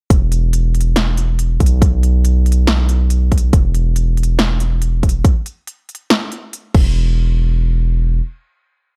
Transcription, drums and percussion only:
0.10 kick loud
0.10 closed hi-hat medium
0.32 closed hi-hat medium
0.53 closed hi-hat medium
0.75 closed hi-hat medium
0.81 closed hi-hat medium
0.96 snare loud
0.96 closed hi-hat medium
1.17 closed hi-hat medium
1.39 closed hi-hat medium
1.60 kick medium
1.60 closed hi-hat medium
1.66 closed hi-hat medium
1.82 kick loud
1.82 closed hi-hat medium
2.03 closed hi-hat medium
2.25 closed hi-hat medium
2.46 closed hi-hat medium
2.52 closed hi-hat medium
2.67 snare loud
2.67 closed hi-hat medium
2.89 closed hi-hat medium
3.10 closed hi-hat medium
3.32 kick medium
3.32 closed hi-hat soft
3.38 closed hi-hat medium
3.53 kick loud
3.53 closed hi-hat medium
3.75 closed hi-hat medium
3.96 closed hi-hat medium
4.17 closed hi-hat soft
4.23 closed hi-hat medium
4.39 snare loud
4.39 closed hi-hat medium
4.60 closed hi-hat medium
4.82 closed hi-hat medium
5.03 kick medium
5.03 closed hi-hat soft
5.09 closed hi-hat medium
5.25 kick loud
5.25 closed hi-hat medium
5.46 closed hi-hat medium
5.67 closed hi-hat medium
5.89 closed hi-hat soft
5.95 closed hi-hat medium
6.10 snare loud
6.10 closed hi-hat medium
6.32 closed hi-hat medium
6.53 closed hi-hat medium
6.75 kick loud
6.75 crash medium

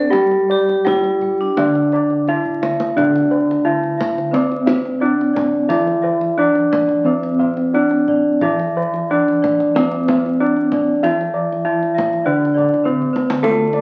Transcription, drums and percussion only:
0.13 kendang high soft
0.31 kendang slap soft
0.51 kendang slap soft
0.69 kendang slap soft
0.87 kendang slap soft
0.87 kendang high soft
0.87 kendang low soft
1.04 kendang slap soft
1.21 kendang low soft
1.57 kendang high medium
1.57 kendang low medium
1.75 kendang slap soft
1.92 kendang slap soft
2.10 kendang slap soft
2.27 kendang slap soft
2.27 kendang low soft
2.45 kendang low soft
2.63 kendang high medium
2.80 kendang high medium
2.98 kendang low medium
3.16 kendang slap soft
3.51 kendang slap soft
3.83 kendang slap soft
4.01 kendang high medium
4.01 kendang low medium
4.18 kendang slap soft
4.34 kendang high medium
4.52 kendang slap soft
4.67 kendang high medium
4.67 kendang low medium
4.85 kendang slap soft
5.21 kendang slap soft
5.36 kendang high medium
5.36 kendang low medium
5.70 kendang low medium
5.87 kendang slap soft
6.21 kendang slap soft
6.55 kendang slap soft
6.73 kendang high medium
6.73 kendang low medium
6.89 kendang slap soft
7.23 kendang slap soft
7.41 kendang low medium
7.57 kendang slap soft
7.91 kendang slap soft
8.08 kendang low medium
8.41 kendang low medium
8.59 kendang slap soft
8.94 kendang slap soft
9.28 kendang slap soft
9.44 kendang high soft
9.44 kendang low medium
9.60 kendang slap soft
9.76 kendang high medium
9.92 kendang slap soft
10.08 kendang high medium
10.08 kendang low medium
10.26 kendang slap soft
10.56 kendang slap soft
10.72 kendang high soft
10.72 kendang low medium
11.04 kendang low medium
11.21 kendang slap soft
11.52 kendang slap soft
11.83 kendang slap soft
11.98 kendang high medium
11.98 kendang low medium
12.13 kendang slap soft
12.45 kendang slap soft
12.58 kendang low medium
12.74 kendang slap soft
12.88 kendang low soft
13.02 kendang low soft
13.16 kendang high medium
13.30 kendang high medium
13.44 kendang high medium
13.73 kendang slap soft

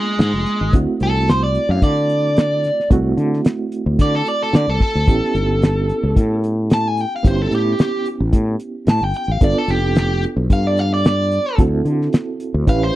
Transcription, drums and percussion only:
0.19 snare loud
0.19 closed hi-hat medium
0.46 closed hi-hat medium
0.73 kick loud
0.73 closed hi-hat medium
1.00 closed hi-hat medium
1.16 snare soft
1.28 snare loud
1.28 closed hi-hat medium
1.55 closed hi-hat medium
1.82 kick medium
1.82 closed hi-hat medium
2.09 closed hi-hat medium
2.37 snare loud
2.37 closed hi-hat medium
2.64 snare soft
2.64 closed hi-hat medium
2.80 snare soft
2.91 kick loud
2.91 closed hi-hat medium
3.18 closed hi-hat medium
3.33 snare soft
3.45 snare loud
3.45 closed hi-hat medium
3.72 closed hi-hat medium
3.99 kick medium
3.99 closed hi-hat medium
4.26 closed hi-hat medium
4.53 snare loud
4.53 closed hi-hat medium
4.80 kick medium
4.80 open hi-hat medium
5.08 kick loud
5.08 closed hi-hat medium
5.24 snare soft
5.35 closed hi-hat medium
5.62 snare loud
5.62 closed hi-hat medium
5.89 closed hi-hat medium
6.16 kick medium
6.16 closed hi-hat medium
6.44 closed hi-hat medium
6.70 snare loud
6.70 closed hi-hat medium
6.97 closed hi-hat medium
7.24 kick loud
7.24 closed hi-hat medium
7.52 closed hi-hat medium
7.79 snare loud
7.79 closed hi-hat medium
8.06 closed hi-hat medium
8.33 kick medium
8.33 closed hi-hat medium
8.60 closed hi-hat medium
8.87 snare loud
8.87 closed hi-hat medium
9.14 closed hi-hat medium
9.41 kick loud
9.41 closed hi-hat medium
9.68 closed hi-hat medium
9.95 snare loud
9.95 closed hi-hat medium
10.23 closed hi-hat medium
10.50 kick medium
10.50 closed hi-hat medium
10.77 closed hi-hat medium
11.04 snare loud
11.04 closed hi-hat medium
11.31 closed hi-hat medium
11.58 kick loud
11.58 closed hi-hat medium
11.86 closed hi-hat medium
12.02 snare soft
12.13 snare loud
12.13 closed hi-hat medium
12.40 closed hi-hat medium
12.67 kick medium
12.67 closed hi-hat medium

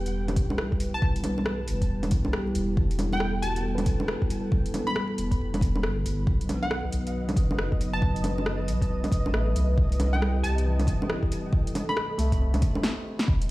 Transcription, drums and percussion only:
0.06 closed hi-hat soft
0.28 closed hi-hat soft
0.28 low bongo soft
0.36 kick loud
0.36 closed hi-hat medium
0.50 low bongo soft
0.58 cross-stick loud
0.72 kick medium
0.80 closed hi-hat medium
1.02 kick loud
1.16 closed hi-hat soft
1.24 closed hi-hat medium
1.24 low bongo soft
1.38 low bongo soft
1.46 cross-stick loud
1.68 closed hi-hat medium
1.82 kick medium
1.82 closed hi-hat soft
2.03 closed hi-hat soft
2.03 low bongo soft
2.11 kick loud
2.11 closed hi-hat medium
2.25 low bongo soft
2.33 cross-stick loud
2.55 closed hi-hat medium
2.77 kick loud
2.91 closed hi-hat soft
2.99 closed hi-hat medium
2.99 low bongo soft
3.13 low bongo soft
3.20 cross-stick loud
3.43 closed hi-hat medium
3.56 closed hi-hat soft
3.78 closed hi-hat soft
3.78 low bongo soft
3.86 kick loud
3.86 closed hi-hat medium
4.00 low bongo soft
4.08 cross-stick loud
4.22 kick medium
4.30 closed hi-hat medium
4.52 kick loud
4.66 closed hi-hat soft
4.74 closed hi-hat medium
4.74 low bongo soft
4.88 low bongo soft
4.96 cross-stick loud
5.18 closed hi-hat medium
5.31 kick medium
5.31 closed hi-hat soft
5.54 closed hi-hat soft
5.54 low bongo soft
5.61 kick loud
5.61 closed hi-hat medium
5.76 low bongo soft
5.83 cross-stick loud
6.06 closed hi-hat medium
6.27 kick loud
6.41 closed hi-hat soft
6.49 closed hi-hat soft
6.49 low bongo soft
6.63 low bongo soft
6.71 cross-stick loud
6.92 closed hi-hat medium
7.07 closed hi-hat soft
7.29 closed hi-hat soft
7.29 low bongo soft
7.36 kick loud
7.36 closed hi-hat medium
7.51 low bongo soft
7.59 cross-stick medium
7.72 kick medium
7.81 closed hi-hat soft
8.02 kick loud
8.16 closed hi-hat soft
8.24 closed hi-hat soft
8.24 low bongo soft
8.38 low bongo soft
8.46 cross-stick loud
8.68 closed hi-hat medium
8.82 kick medium
8.82 closed hi-hat soft
9.04 closed hi-hat soft
9.04 low bongo soft
9.12 kick loud
9.12 closed hi-hat medium
9.26 low bongo soft
9.34 cross-stick medium
9.56 closed hi-hat soft
9.78 kick loud
9.92 closed hi-hat soft
10.00 closed hi-hat medium
10.00 low bongo medium
10.14 low bongo soft
10.22 cross-stick loud
10.44 closed hi-hat medium
10.58 closed hi-hat soft
10.80 closed hi-hat soft
10.80 low bongo soft
10.87 kick medium
10.87 closed hi-hat medium
11.02 low bongo soft
11.10 cross-stick loud
11.23 kick medium
11.32 closed hi-hat soft
11.53 kick loud
11.67 closed hi-hat soft
11.75 closed hi-hat medium
11.75 low bongo soft
11.89 low bongo soft
11.97 cross-stick loud
12.19 closed hi-hat medium
12.32 kick medium
12.32 closed hi-hat soft
12.54 closed hi-hat soft
12.54 low bongo medium
12.62 kick medium
12.62 closed hi-hat medium
12.75 low bongo medium
12.83 snare loud
13.19 snare medium
13.28 kick loud
13.42 closed hi-hat soft

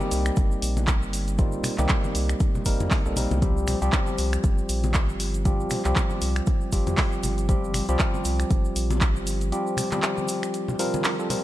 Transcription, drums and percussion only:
0.00 high conga medium
0.00 shaker soft
0.11 open hi-hat loud
0.11 shaker loud
0.26 finger snap medium
0.26 closed hi-hat soft
0.26 shaker soft
0.36 kick loud
0.36 closed hi-hat medium
0.36 shaker medium
0.51 shaker soft
0.62 open hi-hat loud
0.62 shaker medium
0.77 closed hi-hat soft
0.77 high conga medium
0.77 shaker soft
0.87 kick loud
0.87 clap loud
0.87 closed hi-hat medium
0.87 shaker medium
1.02 shaker soft
1.13 open hi-hat loud
1.13 shaker loud
1.28 closed hi-hat medium
1.28 shaker soft
1.38 kick loud
1.38 closed hi-hat medium
1.38 shaker medium
1.52 shaker soft
1.64 finger snap medium
1.64 open hi-hat loud
1.64 low conga loud
1.64 shaker medium
1.78 clap soft
1.78 closed hi-hat soft
1.78 high conga medium
1.78 shaker soft
1.89 kick loud
1.89 clap loud
1.89 closed hi-hat medium
1.89 shaker soft
2.04 high conga medium
2.04 shaker soft
2.15 open hi-hat loud
2.15 shaker medium
2.29 finger snap medium
2.29 closed hi-hat soft
2.29 shaker soft
2.40 kick loud
2.40 closed hi-hat medium
2.40 shaker soft
2.55 low conga medium
2.55 shaker soft
2.65 kick medium
2.65 open hi-hat loud
2.65 shaker medium
2.80 closed hi-hat soft
2.80 high conga medium
2.80 shaker soft
2.91 kick loud
2.91 clap loud
2.91 open hi-hat medium
2.91 shaker medium
3.06 shaker soft
3.16 open hi-hat loud
3.16 low conga medium
3.16 shaker medium
3.31 closed hi-hat soft
3.31 high conga medium
3.31 shaker soft
3.42 kick loud
3.42 closed hi-hat medium
3.42 shaker soft
3.57 shaker soft
3.67 finger snap medium
3.67 open hi-hat loud
3.67 low conga medium
3.67 shaker medium
3.82 closed hi-hat soft
3.82 shaker soft
3.92 kick loud
3.92 clap loud
3.92 closed hi-hat medium
3.92 shaker medium
4.07 high conga medium
4.07 shaker soft
4.18 open hi-hat loud
4.18 shaker medium
4.33 finger snap medium
4.33 closed hi-hat soft
4.33 shaker soft
4.44 kick loud
4.44 closed hi-hat medium
4.44 shaker soft
4.58 shaker soft
4.69 open hi-hat loud
4.69 shaker medium
4.84 closed hi-hat soft
4.84 high conga medium
4.84 shaker soft
4.94 kick loud
4.94 clap loud
4.94 closed hi-hat medium
4.94 shaker soft
5.09 shaker soft
5.20 open hi-hat loud
5.20 shaker medium
5.34 closed hi-hat soft
5.34 shaker soft
5.45 kick loud
5.45 closed hi-hat medium
5.45 shaker medium
5.60 shaker soft
5.70 finger snap medium
5.70 open hi-hat loud
5.70 low conga medium
5.70 shaker medium
5.85 clap soft
5.85 closed hi-hat medium
5.85 shaker soft
5.96 kick loud
5.96 clap loud
5.96 closed hi-hat medium
5.96 shaker soft
6.10 high conga medium
6.10 shaker soft
6.22 open hi-hat loud
6.22 shaker medium
6.36 finger snap medium
6.36 closed hi-hat medium
6.36 shaker soft
6.46 kick loud
6.46 closed hi-hat medium
6.46 shaker soft
6.61 shaker soft
6.72 kick medium
6.72 open hi-hat loud
6.72 shaker medium
6.87 closed hi-hat medium
6.87 high conga medium
6.87 shaker soft
6.97 kick loud
6.97 clap loud
6.97 open hi-hat medium
6.97 shaker medium
7.12 shaker soft
7.23 open hi-hat loud
7.23 low conga medium
7.23 shaker medium
7.38 closed hi-hat soft
7.38 shaker soft
7.49 kick loud
7.49 closed hi-hat medium
7.49 shaker soft
7.64 shaker soft
7.74 finger snap medium
7.74 open hi-hat loud
7.74 low conga medium
7.74 shaker medium
7.89 closed hi-hat medium
7.89 shaker soft
7.99 kick loud
7.99 clap loud
7.99 closed hi-hat medium
7.99 shaker soft
8.14 high conga medium
8.14 shaker soft
8.25 open hi-hat loud
8.25 shaker medium
8.40 finger snap medium
8.40 closed hi-hat medium
8.40 shaker soft
8.51 kick loud
8.51 closed hi-hat medium
8.51 shaker soft
8.65 shaker soft
8.76 open hi-hat loud
8.76 shaker medium
8.90 closed hi-hat medium
8.90 high conga medium
8.90 shaker soft
9.01 kick loud
9.01 clap loud
9.01 closed hi-hat medium
9.01 shaker soft
9.16 shaker soft
9.27 open hi-hat loud
9.27 shaker medium
9.41 closed hi-hat medium
9.41 shaker soft
9.52 closed hi-hat medium
9.52 shaker soft
9.67 shaker soft
9.77 finger snap medium
9.77 open hi-hat loud
9.77 low conga medium
9.77 shaker medium
9.92 clap soft
9.92 closed hi-hat medium
9.92 high conga medium
9.92 shaker soft
10.02 clap loud
10.02 closed hi-hat medium
10.02 shaker soft
10.17 high conga medium
10.17 shaker soft
10.28 open hi-hat loud
10.28 shaker medium
10.43 finger snap medium
10.43 closed hi-hat medium
10.43 shaker soft
10.54 closed hi-hat medium
10.54 shaker soft
10.68 low conga medium
10.68 shaker soft
10.79 open hi-hat loud
10.79 shaker medium
10.94 closed hi-hat medium
10.94 high conga medium
10.94 shaker soft
11.04 clap loud
11.04 open hi-hat medium
11.04 shaker medium
11.19 shaker soft
11.30 open hi-hat loud
11.30 low conga medium
11.30 shaker medium

